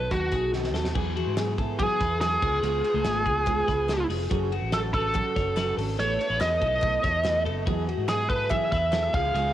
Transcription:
Already playing: B3 D#4 A4 B4
0.10 D#2 F#3 B3 D#4 F#4 A4, kick, closed hi-hat
0.31 B1 F#3 B3 D#4 G#4 A4, kick, closed hi-hat
0.53 B2 D#3 F#3 B3 D#4 F#4 A4, snare
0.64 snare
0.73 D#2 F#3 B3 D#4 A4, snare
0.84 snare
0.95 E2 E3 F#3 B3 E4 G#4, kick, crash
1.16 B3 E4 F#4 G#4, ride
1.26 G#2
1.37 F#3 B3 E4 G#4, snare, clap, ride
1.58 B3 E4 G#4 A4, kick, ride
1.78 E3 F#3 B3 E4 G#4, kick, clap, ride
2.00 E2 B3 E4 G#4 B4, kick, snare, ride
2.21 F#3 B3 E4 G#4 A4, snare, clap, ride
2.42 C#2 B3 F4 G#4, kick, crash
2.63 C#2 C#3 G#3 B3 F4 G#4, hi-hat pedal, ride
2.84 B3 F4 G#4, ride
2.94 C#2 A3
3.04 G#1 G#3 B3 F4 G#4, snare, clap, ride
3.26 C#2 B3 F4 G#4, kick, ride
3.46 C#3 G#3 B3 F4 G#4, kick, clap, ride
3.68 C#2 B3 F4 G#4 B4, kick, snare, ride
3.89 G#3 B3 F4 G#4 A4, snare, clap, ride
4.09 F1 B3 F4 G#4, open hi-hat, ride
4.30 F#1 F#3 C#4 F#4 G#4 A4, kick, hi-hat pedal, ride
4.51 C#4 F#4 A4, ride
4.62 A1
4.72 F#3 C#4 F#4 A4, snare, clap, ride
4.93 C#4 F#4 A4 B4, kick, ride
5.14 F#3 C#4 F#4 A4, kick, clap, ride
5.35 F#1 F#4 A4 C#5, kick, snare, ride
5.56 F#3 C#4 F#4 A4 B4, snare, clap, ride
5.77 G#1 C#4 F#4 A4, open hi-hat, ride
5.98 A1 A3 B3 E4 A4 C#5, hi-hat pedal, ride
6.20 B3 E4 A4, ride
6.30 A1 B4
6.40 E2 A3 B3 E4 A4 D#5, snare, clap, ride
6.62 B1 B3 E4 A4, kick, ride
6.82 A3 B3 E4 A4, kick, clap, ride
7.03 E2 B3 E4 A4 C#5, kick, snare, ride
7.24 A3 B3 E4 A4 B4, snare, clap, ride
7.45 F#1 B3 E4 A4, ride
7.67 E2 E3 F#3 B3 E4 G#4, kick, ride
7.88 B3 E4 F#4 G#4, ride
7.98 G#2
8.08 F#3 B3 E4 G#4, snare, clap, ride
8.30 B3 E4 G#4 A4 B4, kick, ride
8.50 E3 F#3 B3 E4 G#4 E5, kick, clap, ride
8.72 E2 B3 E4 G#4 B4 E5, kick, snare, ride
8.92 F#3 B3 E4 G#4 A4, snare, clap, ride
9.14 C#2 B3 F4 G#4 F5, kick, crash
9.34 C#2 C#3 G#3 B3 F4 G#4, hi-hat pedal, ride

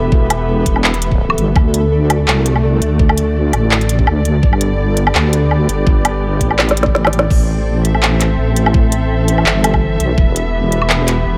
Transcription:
Already playing: E1 E3 B3 G4 A4 E5
0.12 kick
0.30 closed hi-hat, low woodblock
0.66 E1, kick, closed hi-hat
0.76 low woodblock
0.84 clap
0.94 closed hi-hat
1.02 closed hi-hat
1.12 kick
1.30 low woodblock
1.38 G1, closed hi-hat
1.56 D2 D3, kick, low woodblock
1.71 A3, closed hi-hat
1.86 F#4
1.92 D5
2.10 closed hi-hat, low woodblock
2.28 C2, clap
2.46 closed hi-hat
2.56 low woodblock
2.81 D2, closed hi-hat
2.99 kick
3.09 low woodblock
3.18 closed hi-hat
3.53 A1, closed hi-hat, low woodblock
3.71 clap
3.81 closed hi-hat
3.89 closed hi-hat
3.99 kick
4.07 D2, low woodblock
4.25 closed hi-hat
4.43 G1, kick
4.53 low woodblock
4.59 B3 G4, closed hi-hat
4.97 closed hi-hat
5.07 low woodblock
5.15 D2, clap
5.33 closed hi-hat
5.51 low woodblock
5.69 G1, closed hi-hat
5.87 kick
6.05 closed hi-hat, low woodblock
6.41 A1, kick, closed hi-hat
6.51 low woodblock
6.59 snare, clap
6.69 snare, closed hi-hat
6.77 closed hi-hat
6.83 kick, snare
6.95 snare
7.05 snare, low woodblock
7.13 closed hi-hat
7.19 snare
7.30 A1 E3, kick, crash
7.37 C4
7.53 A4
7.85 E5, closed hi-hat
7.95 low woodblock
8.03 clap
8.21 clap, closed hi-hat
8.38 A1
8.56 closed hi-hat
8.66 low woodblock
8.74 kick
8.92 closed hi-hat
9.28 closed hi-hat
9.38 low woodblock
9.46 G1, clap
9.64 closed hi-hat, low woodblock
9.74 kick, low woodblock
10.00 B1, closed hi-hat
10.18 E1 B3, kick
10.36 closed hi-hat
10.42 G4
10.72 closed hi-hat
10.82 low woodblock
10.90 clap
11.08 clap, closed hi-hat
11.26 E1

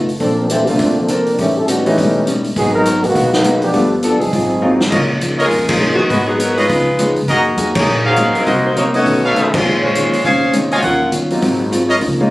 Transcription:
Already playing: F#1 A3 D#4 F4
0.09 open hi-hat
0.18 A#1 F3 A#3 C4 D4 A4 C5, kick, open hi-hat
0.37 F3 C4 D4 A#4
0.49 E3 A3 A#3 C4 D4 G4 A4 C5, closed hi-hat
0.67 B1 D3 A3 A#3 C4 D4 F4, open hi-hat
0.79 F1 A#3 D4 A4 C5, kick, open hi-hat
0.98 F3 C4 D4 A4
1.08 F3 A#3 C4 D4 A4 A#4 C5, closed hi-hat
1.26 open hi-hat
1.38 A1 A2 E3 G3 A3 C#4 D#4 G4, kick, open hi-hat
1.57 G3 C#4 E4 A4
1.68 A2 D#3 G3 B3 C#4 D#4 F#4, closed hi-hat
1.86 E3 G3 A3 C#4 D#4 E4, open hi-hat
1.98 E1 A2 G3 A3 C#4 D#4, kick, open hi-hat
2.27 A2 G3 C#4 D#4, closed hi-hat
2.44 open hi-hat
2.56 G#1 F#3 G#3 B3 D#4 F#4 G#4 A#4, kick, open hi-hat
2.75 F#3 B3 D#4 A#4
2.85 G#3 B3 F#4 A#4, closed hi-hat
3.02 A1 D#3 A#3 B3 F#4, open hi-hat
3.15 B1 G#3 B3 F#4 A#4, kick, open hi-hat
3.33 F#3 A#3 B3 D#4, snare
3.44 F#3 G#3 A#3 B3 D#4 F#4 A#4, closed hi-hat
3.62 F3 B3 D4 G4, open hi-hat
3.73 G1 G3 A3 B3 D4 F4 A4, kick, open hi-hat
4.03 F3 G3 B3 D4 F4 A4, closed hi-hat
4.19 F1 F#3 C4 D#4 G#4, open hi-hat
4.31 G#1 G#2 F#3 C4 F4, kick, open hi-hat
4.61 G#2 F#3 A#3 C4 D#4 F4
4.81 snare
4.90 C#2 C#3 F3 G#3 A#3 C#4 D#4 F4 A#4 C#5 D#5, kick, crash
5.21 C#3 F3 A#3 D#4, closed hi-hat
5.38 G#3 D#4 F4 A#4 C#5 D#5, open hi-hat
5.51 F2 C#3 F3 A#3 D#4, kick, open hi-hat
5.68 F3 A#3 D#4 G#4, kick, crash
5.79 C#3 F3 G#3 A#3 C#4 D#4 G#4
5.96 F#2 D#3 G#3 B3 F#4
6.08 G#2 F#3 G#3 A#3 B3 D#4 F#4 G#4 B4 D#5, kick, open hi-hat
6.25 F#3 B3 D#4 G#4
6.36 G#2 F#3 B3 D#4 A#4, closed hi-hat
6.55 G#3 D#4 F4 B4 C#5 D#5, open hi-hat
6.68 C#2 C#3 F3 B3 D#4, kick, open hi-hat
6.99 C#3 F3 G#3 B3 C#4 D#4 G#4, closed hi-hat
7.16 C#3, open hi-hat
7.28 F#2 F#3 A#3 D#4 F#4 G#4 A#4 D#5, kick, open hi-hat
7.56 F2 F#3 A#3 D#4 G#4, closed hi-hat
7.75 A#3 D#4 G#4 C#5, kick, crash
7.86 A#2 F#3 A#3 D#4 G#4
8.04 A#3 D#4 F#4 G#4 A#4 C5 F5
8.16 F#3 G#3 A#3 C#4 D#4 F#4 G#4, closed hi-hat
8.26 G#2
8.35 G2 F#3 C4 D#4 A#4, open hi-hat
8.45 C2 C3 F#3 A#3 D#4 F#4 A#4 C5 D#5, kick, open hi-hat
8.66 A#3 D#4 F#4 C5
8.76 C3 F#3 A#3 D#4 F#4 C#5, closed hi-hat
8.93 A3 B3 C#4 D#4 F#4 A4 D#5, open hi-hat
9.05 B1 B2 D#3 A3 C#4, kick, open hi-hat
9.24 A3 D#4 F#4 A4 B4 C#5 F5
9.34 B1 B2 D#3 A3 C#4 D#4 F#4 B4, closed hi-hat
9.54 G#3 C#4 F4 C5, kick, crash
9.64 A#1 A#2 D#3 G#3 C#4
9.82 G#3 F4 C5 C#5
9.95 A#2 D#3 G#3 C#4, closed hi-hat
10.12 muted upright bass stroke, open hi-hat
10.24 F1 A#2 D#3 G#3 C#4 G#4 C5 F5, kick, open hi-hat
10.53 A#2 D#3 G#3 C4 C#4 D#4 F4, closed hi-hat
10.71 F4 F#4 C5 C#5 D#5 F5 G#5, open hi-hat
10.82 D#2 D#3 F#3 C#4 F4 A#4 F#5, kick, open hi-hat
11.11 G1 D#3 F#3 C#4 F4, closed hi-hat
11.30 F#3 A#3 C4 D#4 F4, open hi-hat
11.41 G#1 G#2 F#3 C4 F4, kick, open hi-hat
11.71 G#2 F#3 C4 F4, closed hi-hat
11.89 F4 A#4 C#5 D#5, open hi-hat
12.00 C#2 C#3 F3 A#3 D#4, kick, open hi-hat
12.21 G#3 A#3 C#4 D#4 F4

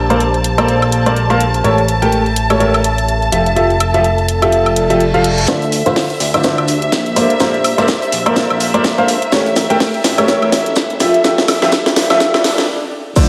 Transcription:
Already playing: A#1 D4 G4 C5 A5
0.10 A#3 A4 A#4 C5 D5, closed hi-hat
0.20 closed hi-hat
0.34 closed hi-hat
0.44 closed hi-hat
0.58 A#3 A4 A#4 C5 D5, closed hi-hat, high woodblock
0.68 closed hi-hat
0.82 closed hi-hat, high woodblock
0.92 closed hi-hat
1.06 A#3 A4 A#4 C5 D5, closed hi-hat
1.16 closed hi-hat
1.30 A#3 A4 A#4 C5 F5, closed hi-hat
1.40 closed hi-hat
1.54 closed hi-hat
1.64 A1 A3 G4 A4 A#4 C#5 E5, closed hi-hat
1.78 closed hi-hat
1.88 closed hi-hat
1.95 A4
2.02 A3 G4 A4 A#4 G5, closed hi-hat
2.12 closed hi-hat
2.26 closed hi-hat
2.36 closed hi-hat
2.50 A3 G4 A4 A#4 C#5, closed hi-hat, high woodblock
2.60 A3 G4 A4 A#4 C#5, closed hi-hat
2.74 closed hi-hat, high woodblock
2.84 closed hi-hat
2.98 closed hi-hat
3.08 closed hi-hat
3.22 closed hi-hat
3.32 F1 F3 F4 G4 A4 E5, closed hi-hat
3.46 closed hi-hat
3.56 F3 F4 G4 A4 E5, closed hi-hat
3.70 closed hi-hat
3.77 D5, closed hi-hat, high woodblock
3.94 F3 F4 G4 A4 E5, closed hi-hat
4.04 closed hi-hat
4.18 closed hi-hat
4.28 closed hi-hat
4.42 F3 F4 G4 A4 E5, closed hi-hat, high woodblock
4.52 closed hi-hat, reverse cymbal
4.66 closed hi-hat, high woodblock
4.76 closed hi-hat
4.90 F3 F4 G4 A4 E5, closed hi-hat
5.00 closed hi-hat
5.14 F3 F4 G4 A4 F5, closed hi-hat
5.24 closed hi-hat
5.38 closed hi-hat
5.47 D2 D3 D4 E4 F4 C5 D5 E5, kick, snare, closed hi-hat, shaker
5.62 closed hi-hat
5.72 open hi-hat, shaker
5.80 G4
5.85 A1 D3 E4 F4 C5 F5, snare, closed hi-hat
5.96 kick, snare, closed hi-hat, open hi-hat
6.10 closed hi-hat
6.20 D2, snare, open hi-hat, shaker
6.24 C5
6.34 D3 E4 F4 C5 D5, snare, closed hi-hat, high woodblock
6.44 D3 E4 F4 C5 D5, kick, snare, closed hi-hat, shaker
6.58 D2, closed hi-hat, high woodblock
6.68 open hi-hat, shaker
6.82 closed hi-hat
6.92 A#1, kick, snare, closed hi-hat, shaker
7.06 closed hi-hat
7.16 A#3 A4 A#4 C5 D5, open hi-hat, shaker
7.30 closed hi-hat
7.40 A#1 A#3 A4 A#4 C5 D5, kick, snare, closed hi-hat, shaker
7.54 closed hi-hat
7.64 open hi-hat, high woodblock, shaker
7.78 F1 A#3 A4 A#4 C5 D5, snare, closed hi-hat
7.88 kick, snare, closed hi-hat, shaker
8.02 closed hi-hat
8.12 A#1, open hi-hat, shaker
8.26 A#3 A4 A#4 C5 D5, closed hi-hat, high woodblock
8.36 kick, snare, closed hi-hat, shaker
8.50 A#1, closed hi-hat, high woodblock
8.60 open hi-hat, shaker
8.74 A#3 A4 A#4 C5 D5, closed hi-hat
8.84 A#1, kick, snare, closed hi-hat, shaker
8.98 A#3 A4 A#4 C5 F5, closed hi-hat
9.08 open hi-hat, shaker
9.22 closed hi-hat
9.32 A1 A3 G4 A4 A#4 C#5 E5, kick, snare, closed hi-hat, shaker
9.46 closed hi-hat
9.56 snare, open hi-hat, shaker
9.67 E1 A3 G4 A4 A#4 C#5 G5, snare, closed hi-hat
9.80 kick, snare, closed hi-hat, open hi-hat
9.94 closed hi-hat
10.04 A1, snare, open hi-hat, shaker
10.18 A3 G4 A4 A#4 C#5, snare, closed hi-hat, high woodblock
10.28 A3 G4 A4 A#4 C#5, kick, snare, closed hi-hat, shaker
10.42 A1, closed hi-hat, high woodblock
10.52 snare, open hi-hat, shaker
10.66 closed hi-hat
10.76 F1, kick, snare, closed hi-hat, shaker
10.90 closed hi-hat
11.00 F3 F4 G4 A4 E5, snare, open hi-hat, shaker
11.14 closed hi-hat
11.24 F1 F3 F4 G4 A4 E5, kick, snare, closed hi-hat, shaker
11.38 snare, closed hi-hat
11.48 snare, open hi-hat, high woodblock, shaker
11.54 D5
11.62 C2 F3 F4 G4 A4 E5, snare, open hi-hat
11.72 kick, snare, closed hi-hat, shaker
11.86 snare, closed hi-hat
11.96 F1, snare, open hi-hat, shaker
12.10 F3 F4 G4 A4 E5, snare, closed hi-hat, high woodblock
12.20 kick, snare, closed hi-hat, swell, shaker
12.34 F1, snare, closed hi-hat, high woodblock
12.44 snare, open hi-hat
12.58 snare, closed hi-hat, open hi-hat
13.16 D2 D3 E4 F4 C5 D5 E5, kick, closed hi-hat, crash, downlifter, cabasa, shaker

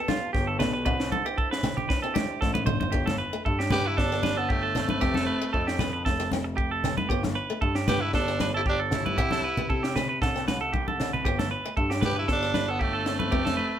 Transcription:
Already playing: B3 G4 A4
0.08 D4 F4, snare, high conga
0.33 G1 G4, kick, snare
0.47 A4
0.59 B1 D4 B4, snare, low conga
0.73 B4
0.85 C2 D4 E4 B4 C5, kick
1.00 snare
1.12 A4, high conga
1.25 B3 G4
1.38 A4, kick
1.51 B4, snare
1.63 C4, snare, low conga
1.77 G4, low conga
1.89 B4, kick, snare
2.02 C4 A4
2.14 D4 G4, snare, high conga
2.41 A1 A4, kick, snare
2.54 B4, high conga
2.66 G1 D4 C5, mid tom, high conga, low conga
2.80 C5, floor tom, high conga
2.92 G1 D4 G4, kick
3.06 A4, snare, high conga
3.18 B4
3.33 A3
3.45 G2 A4, kick
3.59 G4, snare
3.70 B3 G4 B4, snare, high conga, low conga
3.85 E4 G4 B4
3.97 G1 D4 G4 A4, kick, snare
4.12 B3, snare
4.23 D4 B4, snare, high conga
4.37 B3 D4 A4
4.49 A3 D4 G4, kick
4.63 A4
4.75 A3 C4 D4, snare, low conga
4.89 B4, high conga
5.01 F1 B3 G4, kick, snare
5.14 A4, snare, high conga
5.27 B4
5.42 A3
5.53 F2 A4, kick
5.67 G4, snare
5.79 B3 B4, snare, high conga, low conga
5.93 B4
6.05 F1 A4, kick, snare
6.20 muted steel-string acoustic guitar stroke, snare
6.31 C4, snare, high conga
6.44 muted clean electric guitar stroke
6.57 G4, kick
6.71 A4
6.84 C4, snare, low conga
6.97 B4, high conga
7.09 G1 B3 G4, kick
7.23 snare, high conga
7.35 B4
7.50 A3
7.61 G2 A4, kick
7.75 G4, snare
7.88 B3 G4 B4, snare, high conga, low conga
8.01 E4 G4 B4
8.13 G1 D4 G4 A4, kick, snare
8.28 B3, snare
8.39 D4 B4, snare, high conga
8.54 E4 G4 A4
8.66 D4 G4, kick
8.79 A4
8.91 D4 E4, snare, low conga
8.96 G4
9.06 B4, high conga
9.18 C2 G4, muted steel-string acoustic guitar stroke, kick
9.31 A4, snare, high conga
9.44 B4
9.57 B3, low conga
9.70 C3 A4, kick
9.83 G4, snare
9.95 C4 B4, snare, low conga
10.09 B4
10.22 C2 A4, kick, snare
10.36 C4, snare
10.48 B4, snare, high conga
10.61 A4
10.73 G4, kick, high conga
10.88 A4, high conga
11.00 D4, snare, low conga
11.13 B4, low conga
11.25 G1 B3 G4, kick
11.39 A4, snare, high conga
11.51 B4
11.65 A3
11.77 G2 A4, kick
11.90 G4, snare
12.01 B3 B4, snare, high conga, low conga
12.05 G4 B4
12.16 E4 B4
12.20 G4
12.28 G1 D4 A4, kick, snare
12.32 G4
12.43 B3, snare
12.54 D4 B4, snare, high conga
12.68 B3 D4 A4
12.79 A3 G4, kick
12.84 D4
12.93 A4
13.06 A3 C4 D4, snare
13.19 B4, high conga
13.31 F1 B3 G4, kick
13.45 A4, snare, high conga
13.57 B4

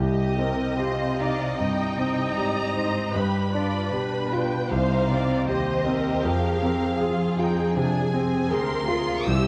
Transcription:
Already playing: C2 G4 D#5
0.00 C3 D#5
0.39 C4 A#4
0.79 F4 G4 C5
1.18 D#4 D5 F5
1.59 G2 D#5 G5
1.98 C4
2.36 G#2 G4 D5 A#5
2.75 D#4 C5
3.14 G2 G4 B4 B5
3.54 D4 F4 D5
3.92 B2 D4 G4 B4
4.32 F4 G5
4.71 C2 C3 D#4 C5 F5
5.09 C4 D5
5.47 D#2 G4 C5 D#5
5.86 C4 A#4
6.25 F2 G#4 A#4 F5
6.62 C4
7.01 F4 G#4
7.39 D#4 F4 G5
7.77 C3 D4 G#5
8.14 C4
8.51 D2 G4 G#4 A#4 C6
8.88 F4 G#4
9.27 C2 C3 G4 C5 E6

